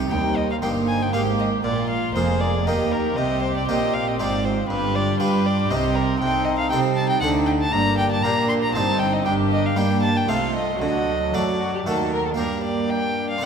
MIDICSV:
0, 0, Header, 1, 8, 480
1, 0, Start_track
1, 0, Key_signature, -3, "major"
1, 0, Tempo, 508475
1, 100, Time_signature, 3, 2, 24, 8
1, 5866, Key_signature, -2, "minor"
1, 9219, Tempo, 521739
1, 12615, End_track
2, 0, Start_track
2, 0, Title_t, "Violin"
2, 0, Program_c, 0, 40
2, 97, Note_on_c, 0, 79, 66
2, 343, Note_on_c, 0, 75, 62
2, 357, Note_off_c, 0, 79, 0
2, 464, Note_off_c, 0, 75, 0
2, 484, Note_on_c, 0, 77, 52
2, 528, Note_off_c, 0, 77, 0
2, 587, Note_on_c, 0, 79, 57
2, 663, Note_off_c, 0, 79, 0
2, 824, Note_on_c, 0, 80, 60
2, 965, Note_on_c, 0, 79, 59
2, 979, Note_off_c, 0, 80, 0
2, 1066, Note_off_c, 0, 79, 0
2, 1072, Note_on_c, 0, 77, 57
2, 1147, Note_off_c, 0, 77, 0
2, 1317, Note_on_c, 0, 75, 54
2, 1392, Note_off_c, 0, 75, 0
2, 1547, Note_on_c, 0, 74, 62
2, 1786, Note_off_c, 0, 74, 0
2, 1792, Note_on_c, 0, 77, 62
2, 2023, Note_off_c, 0, 77, 0
2, 2029, Note_on_c, 0, 72, 68
2, 2271, Note_on_c, 0, 74, 56
2, 2285, Note_off_c, 0, 72, 0
2, 2515, Note_on_c, 0, 75, 65
2, 2529, Note_off_c, 0, 74, 0
2, 2753, Note_on_c, 0, 70, 60
2, 2767, Note_off_c, 0, 75, 0
2, 2984, Note_on_c, 0, 75, 75
2, 2998, Note_off_c, 0, 70, 0
2, 3225, Note_off_c, 0, 75, 0
2, 3231, Note_on_c, 0, 72, 59
2, 3351, Note_off_c, 0, 72, 0
2, 3366, Note_on_c, 0, 74, 54
2, 3465, Note_off_c, 0, 74, 0
2, 3471, Note_on_c, 0, 75, 65
2, 3717, Note_on_c, 0, 77, 64
2, 3731, Note_off_c, 0, 75, 0
2, 3848, Note_on_c, 0, 75, 58
2, 3863, Note_off_c, 0, 77, 0
2, 3962, Note_off_c, 0, 75, 0
2, 3969, Note_on_c, 0, 74, 66
2, 4198, Note_on_c, 0, 72, 59
2, 4213, Note_off_c, 0, 74, 0
2, 4420, Note_off_c, 0, 72, 0
2, 4425, Note_on_c, 0, 71, 73
2, 4677, Note_on_c, 0, 74, 71
2, 4691, Note_off_c, 0, 71, 0
2, 4904, Note_off_c, 0, 74, 0
2, 4910, Note_on_c, 0, 71, 69
2, 5150, Note_on_c, 0, 74, 72
2, 5164, Note_off_c, 0, 71, 0
2, 5380, Note_on_c, 0, 75, 70
2, 5394, Note_off_c, 0, 74, 0
2, 5617, Note_on_c, 0, 70, 66
2, 5631, Note_off_c, 0, 75, 0
2, 5844, Note_off_c, 0, 70, 0
2, 5850, Note_on_c, 0, 79, 76
2, 6082, Note_on_c, 0, 75, 67
2, 6096, Note_off_c, 0, 79, 0
2, 6212, Note_off_c, 0, 75, 0
2, 6216, Note_on_c, 0, 77, 66
2, 6320, Note_off_c, 0, 77, 0
2, 6326, Note_on_c, 0, 79, 75
2, 6401, Note_off_c, 0, 79, 0
2, 6569, Note_on_c, 0, 81, 71
2, 6689, Note_off_c, 0, 81, 0
2, 6695, Note_on_c, 0, 79, 71
2, 6797, Note_off_c, 0, 79, 0
2, 6803, Note_on_c, 0, 78, 76
2, 6878, Note_off_c, 0, 78, 0
2, 7044, Note_on_c, 0, 79, 67
2, 7095, Note_off_c, 0, 79, 0
2, 7189, Note_on_c, 0, 81, 77
2, 7288, Note_on_c, 0, 82, 91
2, 7303, Note_off_c, 0, 81, 0
2, 7531, Note_off_c, 0, 82, 0
2, 7537, Note_on_c, 0, 79, 73
2, 7655, Note_off_c, 0, 79, 0
2, 7660, Note_on_c, 0, 81, 72
2, 7762, Note_on_c, 0, 82, 83
2, 7776, Note_off_c, 0, 81, 0
2, 8008, Note_off_c, 0, 82, 0
2, 8014, Note_on_c, 0, 84, 74
2, 8063, Note_off_c, 0, 84, 0
2, 8144, Note_on_c, 0, 82, 75
2, 8254, Note_off_c, 0, 82, 0
2, 8260, Note_on_c, 0, 81, 76
2, 8487, Note_on_c, 0, 79, 75
2, 8502, Note_off_c, 0, 81, 0
2, 8623, Note_on_c, 0, 75, 68
2, 8637, Note_off_c, 0, 79, 0
2, 8731, Note_off_c, 0, 75, 0
2, 8737, Note_on_c, 0, 79, 76
2, 8812, Note_off_c, 0, 79, 0
2, 8987, Note_on_c, 0, 75, 69
2, 9114, Note_on_c, 0, 77, 57
2, 9128, Note_off_c, 0, 75, 0
2, 9221, Note_on_c, 0, 79, 69
2, 9235, Note_off_c, 0, 77, 0
2, 9453, Note_off_c, 0, 79, 0
2, 9459, Note_on_c, 0, 81, 73
2, 9587, Note_on_c, 0, 79, 64
2, 9601, Note_off_c, 0, 81, 0
2, 9701, Note_on_c, 0, 77, 65
2, 9715, Note_off_c, 0, 79, 0
2, 9940, Note_off_c, 0, 77, 0
2, 9945, Note_on_c, 0, 75, 65
2, 10179, Note_off_c, 0, 75, 0
2, 10184, Note_on_c, 0, 75, 72
2, 10671, Note_on_c, 0, 74, 59
2, 10684, Note_off_c, 0, 75, 0
2, 11152, Note_off_c, 0, 74, 0
2, 11627, Note_on_c, 0, 70, 63
2, 11850, Note_off_c, 0, 70, 0
2, 11859, Note_on_c, 0, 74, 58
2, 12101, Note_on_c, 0, 79, 68
2, 12115, Note_off_c, 0, 74, 0
2, 12460, Note_off_c, 0, 79, 0
2, 12473, Note_on_c, 0, 77, 59
2, 12601, Note_off_c, 0, 77, 0
2, 12615, End_track
3, 0, Start_track
3, 0, Title_t, "Violin section"
3, 0, Program_c, 1, 48
3, 98, Note_on_c, 1, 72, 43
3, 1512, Note_off_c, 1, 72, 0
3, 1552, Note_on_c, 1, 70, 43
3, 2515, Note_off_c, 1, 70, 0
3, 2520, Note_on_c, 1, 67, 42
3, 2990, Note_off_c, 1, 67, 0
3, 3001, Note_on_c, 1, 67, 40
3, 3463, Note_off_c, 1, 67, 0
3, 3474, Note_on_c, 1, 67, 47
3, 3946, Note_off_c, 1, 67, 0
3, 3956, Note_on_c, 1, 65, 55
3, 5381, Note_on_c, 1, 67, 53
3, 5386, Note_off_c, 1, 65, 0
3, 5863, Note_off_c, 1, 67, 0
3, 5867, Note_on_c, 1, 69, 49
3, 6806, Note_off_c, 1, 69, 0
3, 6818, Note_on_c, 1, 69, 48
3, 7287, Note_off_c, 1, 69, 0
3, 7296, Note_on_c, 1, 67, 51
3, 7760, Note_off_c, 1, 67, 0
3, 7771, Note_on_c, 1, 67, 52
3, 8246, Note_off_c, 1, 67, 0
3, 8259, Note_on_c, 1, 72, 53
3, 8734, Note_on_c, 1, 70, 44
3, 8739, Note_off_c, 1, 72, 0
3, 9218, Note_off_c, 1, 70, 0
3, 9225, Note_on_c, 1, 67, 51
3, 9699, Note_off_c, 1, 67, 0
3, 9702, Note_on_c, 1, 69, 45
3, 10158, Note_off_c, 1, 69, 0
3, 10169, Note_on_c, 1, 69, 44
3, 11414, Note_off_c, 1, 69, 0
3, 11629, Note_on_c, 1, 67, 42
3, 12543, Note_off_c, 1, 67, 0
3, 12579, Note_on_c, 1, 69, 46
3, 12615, Note_off_c, 1, 69, 0
3, 12615, End_track
4, 0, Start_track
4, 0, Title_t, "Violin section"
4, 0, Program_c, 2, 48
4, 87, Note_on_c, 2, 63, 40
4, 543, Note_off_c, 2, 63, 0
4, 575, Note_on_c, 2, 63, 40
4, 1052, Note_off_c, 2, 63, 0
4, 1062, Note_on_c, 2, 67, 47
4, 1549, Note_off_c, 2, 67, 0
4, 1552, Note_on_c, 2, 65, 38
4, 2025, Note_off_c, 2, 65, 0
4, 2034, Note_on_c, 2, 68, 44
4, 2511, Note_on_c, 2, 67, 47
4, 2515, Note_off_c, 2, 68, 0
4, 4425, Note_off_c, 2, 67, 0
4, 4436, Note_on_c, 2, 67, 49
4, 5838, Note_off_c, 2, 67, 0
4, 5865, Note_on_c, 2, 63, 55
4, 7269, Note_off_c, 2, 63, 0
4, 7297, Note_on_c, 2, 62, 53
4, 7768, Note_off_c, 2, 62, 0
4, 7786, Note_on_c, 2, 62, 49
4, 8254, Note_off_c, 2, 62, 0
4, 8259, Note_on_c, 2, 63, 54
4, 8731, Note_on_c, 2, 67, 49
4, 8739, Note_off_c, 2, 63, 0
4, 9210, Note_on_c, 2, 62, 46
4, 9216, Note_off_c, 2, 67, 0
4, 9684, Note_on_c, 2, 65, 47
4, 9692, Note_off_c, 2, 62, 0
4, 10174, Note_off_c, 2, 65, 0
4, 10177, Note_on_c, 2, 66, 40
4, 10617, Note_off_c, 2, 66, 0
4, 10659, Note_on_c, 2, 69, 50
4, 10732, Note_off_c, 2, 69, 0
4, 10901, Note_on_c, 2, 66, 42
4, 11023, Note_off_c, 2, 66, 0
4, 11032, Note_on_c, 2, 67, 53
4, 11080, Note_off_c, 2, 67, 0
4, 11143, Note_on_c, 2, 69, 51
4, 11384, Note_off_c, 2, 69, 0
4, 11384, Note_on_c, 2, 70, 58
4, 11506, Note_off_c, 2, 70, 0
4, 11510, Note_on_c, 2, 69, 42
4, 11558, Note_off_c, 2, 69, 0
4, 11619, Note_on_c, 2, 62, 39
4, 12615, Note_off_c, 2, 62, 0
4, 12615, End_track
5, 0, Start_track
5, 0, Title_t, "Harpsichord"
5, 0, Program_c, 3, 6
5, 0, Note_on_c, 3, 67, 53
5, 104, Note_off_c, 3, 67, 0
5, 107, Note_on_c, 3, 39, 35
5, 550, Note_off_c, 3, 39, 0
5, 587, Note_on_c, 3, 43, 35
5, 590, Note_on_c, 3, 58, 28
5, 591, Note_on_c, 3, 63, 28
5, 595, Note_on_c, 3, 67, 31
5, 936, Note_off_c, 3, 58, 0
5, 936, Note_off_c, 3, 63, 0
5, 939, Note_off_c, 3, 67, 0
5, 1031, Note_off_c, 3, 43, 0
5, 1070, Note_on_c, 3, 44, 35
5, 1071, Note_on_c, 3, 58, 31
5, 1074, Note_on_c, 3, 63, 30
5, 1078, Note_on_c, 3, 67, 31
5, 1418, Note_off_c, 3, 58, 0
5, 1420, Note_off_c, 3, 63, 0
5, 1423, Note_off_c, 3, 67, 0
5, 1515, Note_off_c, 3, 44, 0
5, 1551, Note_on_c, 3, 46, 40
5, 1996, Note_off_c, 3, 46, 0
5, 2037, Note_on_c, 3, 58, 29
5, 2039, Note_on_c, 3, 41, 35
5, 2039, Note_on_c, 3, 65, 27
5, 2045, Note_on_c, 3, 68, 29
5, 2382, Note_off_c, 3, 58, 0
5, 2383, Note_off_c, 3, 65, 0
5, 2387, Note_off_c, 3, 68, 0
5, 2479, Note_off_c, 3, 41, 0
5, 2523, Note_on_c, 3, 51, 40
5, 2523, Note_on_c, 3, 58, 33
5, 2531, Note_on_c, 3, 63, 33
5, 2536, Note_on_c, 3, 67, 31
5, 2960, Note_off_c, 3, 51, 0
5, 2960, Note_off_c, 3, 58, 0
5, 2964, Note_off_c, 3, 63, 0
5, 2967, Note_off_c, 3, 67, 0
5, 3003, Note_on_c, 3, 48, 43
5, 3442, Note_off_c, 3, 48, 0
5, 3481, Note_on_c, 3, 60, 30
5, 3482, Note_on_c, 3, 46, 41
5, 3483, Note_on_c, 3, 63, 31
5, 3487, Note_on_c, 3, 67, 34
5, 3825, Note_off_c, 3, 60, 0
5, 3827, Note_off_c, 3, 63, 0
5, 3829, Note_off_c, 3, 67, 0
5, 3922, Note_off_c, 3, 46, 0
5, 3960, Note_on_c, 3, 44, 43
5, 3963, Note_on_c, 3, 60, 35
5, 3965, Note_on_c, 3, 63, 32
5, 3971, Note_on_c, 3, 67, 35
5, 4304, Note_off_c, 3, 60, 0
5, 4305, Note_off_c, 3, 63, 0
5, 4309, Note_off_c, 3, 67, 0
5, 4397, Note_off_c, 3, 44, 0
5, 4440, Note_on_c, 3, 43, 47
5, 4875, Note_off_c, 3, 43, 0
5, 4908, Note_on_c, 3, 55, 40
5, 4909, Note_on_c, 3, 62, 35
5, 4910, Note_on_c, 3, 65, 33
5, 4916, Note_on_c, 3, 67, 37
5, 5253, Note_off_c, 3, 62, 0
5, 5253, Note_off_c, 3, 65, 0
5, 5257, Note_off_c, 3, 67, 0
5, 5348, Note_off_c, 3, 55, 0
5, 5387, Note_on_c, 3, 60, 37
5, 5388, Note_on_c, 3, 48, 44
5, 5393, Note_on_c, 3, 63, 37
5, 5399, Note_on_c, 3, 67, 35
5, 5828, Note_off_c, 3, 48, 0
5, 5828, Note_off_c, 3, 60, 0
5, 5831, Note_off_c, 3, 63, 0
5, 5834, Note_off_c, 3, 67, 0
5, 5870, Note_on_c, 3, 48, 46
5, 6306, Note_off_c, 3, 48, 0
5, 6348, Note_on_c, 3, 60, 44
5, 6348, Note_on_c, 3, 63, 32
5, 6352, Note_on_c, 3, 69, 38
5, 6690, Note_off_c, 3, 63, 0
5, 6692, Note_off_c, 3, 69, 0
5, 6785, Note_off_c, 3, 60, 0
5, 6820, Note_on_c, 3, 50, 45
5, 6822, Note_on_c, 3, 60, 37
5, 6827, Note_on_c, 3, 62, 36
5, 6833, Note_on_c, 3, 69, 35
5, 7260, Note_off_c, 3, 50, 0
5, 7261, Note_off_c, 3, 60, 0
5, 7264, Note_off_c, 3, 62, 0
5, 7266, Note_off_c, 3, 69, 0
5, 7305, Note_on_c, 3, 43, 51
5, 7744, Note_off_c, 3, 43, 0
5, 7779, Note_on_c, 3, 58, 36
5, 7781, Note_on_c, 3, 46, 42
5, 7785, Note_on_c, 3, 62, 34
5, 7788, Note_on_c, 3, 67, 38
5, 8125, Note_off_c, 3, 58, 0
5, 8129, Note_off_c, 3, 62, 0
5, 8131, Note_off_c, 3, 67, 0
5, 8223, Note_off_c, 3, 46, 0
5, 8264, Note_on_c, 3, 43, 46
5, 8264, Note_on_c, 3, 60, 39
5, 8271, Note_on_c, 3, 63, 39
5, 8275, Note_on_c, 3, 67, 35
5, 8703, Note_off_c, 3, 43, 0
5, 8704, Note_off_c, 3, 60, 0
5, 8707, Note_off_c, 3, 63, 0
5, 8709, Note_off_c, 3, 67, 0
5, 8741, Note_on_c, 3, 43, 45
5, 9184, Note_off_c, 3, 43, 0
5, 9218, Note_on_c, 3, 55, 39
5, 9218, Note_on_c, 3, 58, 34
5, 9223, Note_on_c, 3, 62, 34
5, 9228, Note_on_c, 3, 67, 35
5, 9562, Note_off_c, 3, 58, 0
5, 9565, Note_off_c, 3, 62, 0
5, 9568, Note_off_c, 3, 67, 0
5, 9659, Note_off_c, 3, 55, 0
5, 9695, Note_on_c, 3, 48, 41
5, 9695, Note_on_c, 3, 57, 32
5, 9701, Note_on_c, 3, 63, 35
5, 9705, Note_on_c, 3, 69, 30
5, 10143, Note_off_c, 3, 48, 0
5, 10143, Note_off_c, 3, 57, 0
5, 10146, Note_off_c, 3, 63, 0
5, 10148, Note_off_c, 3, 69, 0
5, 10185, Note_on_c, 3, 50, 41
5, 10632, Note_off_c, 3, 50, 0
5, 10666, Note_on_c, 3, 57, 30
5, 10667, Note_on_c, 3, 54, 39
5, 10671, Note_on_c, 3, 66, 28
5, 10673, Note_on_c, 3, 69, 33
5, 11014, Note_off_c, 3, 57, 0
5, 11017, Note_off_c, 3, 66, 0
5, 11019, Note_off_c, 3, 69, 0
5, 11113, Note_off_c, 3, 54, 0
5, 11150, Note_on_c, 3, 51, 37
5, 11150, Note_on_c, 3, 57, 33
5, 11156, Note_on_c, 3, 66, 33
5, 11159, Note_on_c, 3, 69, 34
5, 11497, Note_off_c, 3, 57, 0
5, 11501, Note_off_c, 3, 66, 0
5, 11503, Note_off_c, 3, 69, 0
5, 11590, Note_on_c, 3, 58, 36
5, 11595, Note_off_c, 3, 51, 0
5, 11604, Note_on_c, 3, 62, 33
5, 11618, Note_on_c, 3, 67, 32
5, 11631, Note_on_c, 3, 43, 36
5, 12531, Note_off_c, 3, 58, 0
5, 12538, Note_off_c, 3, 62, 0
5, 12543, Note_off_c, 3, 43, 0
5, 12544, Note_on_c, 3, 60, 35
5, 12545, Note_off_c, 3, 67, 0
5, 12558, Note_on_c, 3, 62, 31
5, 12572, Note_on_c, 3, 69, 34
5, 12585, Note_on_c, 3, 42, 40
5, 12615, Note_off_c, 3, 42, 0
5, 12615, Note_off_c, 3, 60, 0
5, 12615, Note_off_c, 3, 62, 0
5, 12615, Note_off_c, 3, 69, 0
5, 12615, End_track
6, 0, Start_track
6, 0, Title_t, "Viola section"
6, 0, Program_c, 4, 48
6, 100, Note_on_c, 4, 55, 39
6, 550, Note_off_c, 4, 55, 0
6, 582, Note_on_c, 4, 58, 39
6, 1531, Note_off_c, 4, 58, 0
6, 1553, Note_on_c, 4, 58, 42
6, 2025, Note_off_c, 4, 58, 0
6, 2031, Note_on_c, 4, 56, 36
6, 2513, Note_off_c, 4, 56, 0
6, 2516, Note_on_c, 4, 58, 46
6, 2985, Note_off_c, 4, 58, 0
6, 2992, Note_on_c, 4, 60, 46
6, 4403, Note_off_c, 4, 60, 0
6, 4435, Note_on_c, 4, 62, 49
6, 4898, Note_off_c, 4, 62, 0
6, 4910, Note_on_c, 4, 62, 44
6, 5377, Note_off_c, 4, 62, 0
6, 5391, Note_on_c, 4, 60, 55
6, 6344, Note_off_c, 4, 60, 0
6, 6344, Note_on_c, 4, 55, 49
6, 6817, Note_on_c, 4, 57, 53
6, 6821, Note_off_c, 4, 55, 0
6, 7287, Note_off_c, 4, 57, 0
6, 7300, Note_on_c, 4, 58, 54
6, 8256, Note_on_c, 4, 60, 54
6, 8261, Note_off_c, 4, 58, 0
6, 8737, Note_off_c, 4, 60, 0
6, 8738, Note_on_c, 4, 62, 49
6, 9218, Note_on_c, 4, 58, 45
6, 9220, Note_off_c, 4, 62, 0
6, 9696, Note_off_c, 4, 58, 0
6, 9696, Note_on_c, 4, 57, 45
6, 10180, Note_off_c, 4, 57, 0
6, 10180, Note_on_c, 4, 54, 48
6, 11420, Note_off_c, 4, 54, 0
6, 11629, Note_on_c, 4, 58, 46
6, 12543, Note_off_c, 4, 58, 0
6, 12581, Note_on_c, 4, 60, 41
6, 12615, Note_off_c, 4, 60, 0
6, 12615, End_track
7, 0, Start_track
7, 0, Title_t, "Cello section"
7, 0, Program_c, 5, 48
7, 98, Note_on_c, 5, 39, 50
7, 549, Note_off_c, 5, 39, 0
7, 583, Note_on_c, 5, 43, 43
7, 1065, Note_on_c, 5, 44, 47
7, 1066, Note_off_c, 5, 43, 0
7, 1541, Note_off_c, 5, 44, 0
7, 1546, Note_on_c, 5, 46, 48
7, 2022, Note_off_c, 5, 46, 0
7, 2032, Note_on_c, 5, 41, 46
7, 2504, Note_off_c, 5, 41, 0
7, 2513, Note_on_c, 5, 51, 49
7, 2993, Note_off_c, 5, 51, 0
7, 2994, Note_on_c, 5, 48, 43
7, 3466, Note_off_c, 5, 48, 0
7, 3478, Note_on_c, 5, 46, 46
7, 3948, Note_off_c, 5, 46, 0
7, 3959, Note_on_c, 5, 44, 57
7, 4425, Note_off_c, 5, 44, 0
7, 4435, Note_on_c, 5, 43, 50
7, 4901, Note_off_c, 5, 43, 0
7, 4907, Note_on_c, 5, 55, 50
7, 5376, Note_off_c, 5, 55, 0
7, 5382, Note_on_c, 5, 48, 63
7, 5854, Note_off_c, 5, 48, 0
7, 5865, Note_on_c, 5, 48, 57
7, 6332, Note_off_c, 5, 48, 0
7, 6336, Note_on_c, 5, 60, 56
7, 6807, Note_off_c, 5, 60, 0
7, 6815, Note_on_c, 5, 50, 60
7, 7285, Note_off_c, 5, 50, 0
7, 7299, Note_on_c, 5, 43, 56
7, 7770, Note_off_c, 5, 43, 0
7, 7777, Note_on_c, 5, 46, 55
7, 8249, Note_off_c, 5, 46, 0
7, 8256, Note_on_c, 5, 43, 62
7, 8719, Note_off_c, 5, 43, 0
7, 8731, Note_on_c, 5, 43, 55
7, 9207, Note_off_c, 5, 43, 0
7, 9216, Note_on_c, 5, 55, 53
7, 9685, Note_off_c, 5, 55, 0
7, 9689, Note_on_c, 5, 48, 54
7, 10167, Note_off_c, 5, 48, 0
7, 10174, Note_on_c, 5, 50, 51
7, 10660, Note_on_c, 5, 54, 45
7, 10664, Note_off_c, 5, 50, 0
7, 11147, Note_off_c, 5, 54, 0
7, 11147, Note_on_c, 5, 51, 46
7, 11621, Note_off_c, 5, 51, 0
7, 11631, Note_on_c, 5, 43, 45
7, 12544, Note_off_c, 5, 43, 0
7, 12581, Note_on_c, 5, 42, 50
7, 12615, Note_off_c, 5, 42, 0
7, 12615, End_track
8, 0, Start_track
8, 0, Title_t, "Double bass section"
8, 0, Program_c, 6, 48
8, 100, Note_on_c, 6, 39, 52
8, 550, Note_off_c, 6, 39, 0
8, 585, Note_on_c, 6, 31, 43
8, 1067, Note_off_c, 6, 31, 0
8, 1069, Note_on_c, 6, 32, 48
8, 1543, Note_off_c, 6, 32, 0
8, 1552, Note_on_c, 6, 34, 49
8, 2025, Note_off_c, 6, 34, 0
8, 2038, Note_on_c, 6, 29, 51
8, 2507, Note_off_c, 6, 29, 0
8, 2519, Note_on_c, 6, 39, 51
8, 2996, Note_off_c, 6, 39, 0
8, 2996, Note_on_c, 6, 36, 55
8, 3467, Note_off_c, 6, 36, 0
8, 3473, Note_on_c, 6, 34, 50
8, 3945, Note_off_c, 6, 34, 0
8, 3954, Note_on_c, 6, 32, 56
8, 4423, Note_off_c, 6, 32, 0
8, 4430, Note_on_c, 6, 31, 58
8, 4898, Note_off_c, 6, 31, 0
8, 4906, Note_on_c, 6, 43, 54
8, 5375, Note_off_c, 6, 43, 0
8, 5388, Note_on_c, 6, 36, 62
8, 5856, Note_off_c, 6, 36, 0
8, 5867, Note_on_c, 6, 36, 63
8, 6333, Note_off_c, 6, 36, 0
8, 6344, Note_on_c, 6, 48, 58
8, 6811, Note_off_c, 6, 48, 0
8, 6822, Note_on_c, 6, 38, 55
8, 7289, Note_off_c, 6, 38, 0
8, 7300, Note_on_c, 6, 31, 59
8, 7770, Note_off_c, 6, 31, 0
8, 7782, Note_on_c, 6, 34, 56
8, 8252, Note_off_c, 6, 34, 0
8, 8260, Note_on_c, 6, 31, 60
8, 8733, Note_off_c, 6, 31, 0
8, 8744, Note_on_c, 6, 31, 57
8, 9213, Note_off_c, 6, 31, 0
8, 9224, Note_on_c, 6, 43, 53
8, 9689, Note_off_c, 6, 43, 0
8, 9698, Note_on_c, 6, 36, 48
8, 10172, Note_off_c, 6, 36, 0
8, 10182, Note_on_c, 6, 38, 53
8, 10668, Note_off_c, 6, 38, 0
8, 10671, Note_on_c, 6, 42, 47
8, 11152, Note_off_c, 6, 42, 0
8, 11152, Note_on_c, 6, 39, 47
8, 11624, Note_off_c, 6, 39, 0
8, 12615, End_track
0, 0, End_of_file